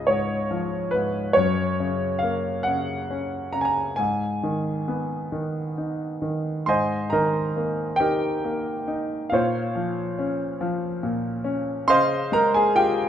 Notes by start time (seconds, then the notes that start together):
Already playing: C#2 G#2 C#3 D#5 F5
0.07 G#2 C#5
0.51 F3
0.91 G#2 B4
1.33 F#2 C#5
1.80 C#3
2.19 F5
2.23 A#3
2.63 F#5
2.67 C#3
3.10 C#4
3.53 C#3 A#5
3.61 G#5 A#5
3.96 G#2 G#5
4.43 D#3
4.88 B3
5.32 D#3
5.78 D#4
6.22 D#3
6.66 G#2 C5 D#5 G#5 C6
7.10 D#3 A#4 D#5 A#5
7.57 A#3
7.96 D#4 G4 A#4 G5
8.44 A#3
8.88 D#4
9.30 A#2 F4 C5 C#5 F5
9.75 F3
10.19 C#4
10.61 F3
11.03 A#2
11.44 C#4
11.88 C#3 C5 D#5 F5 C6
12.32 G#3 A#4 A#5
12.54 G#4 G#5
12.75 F4 G4 G5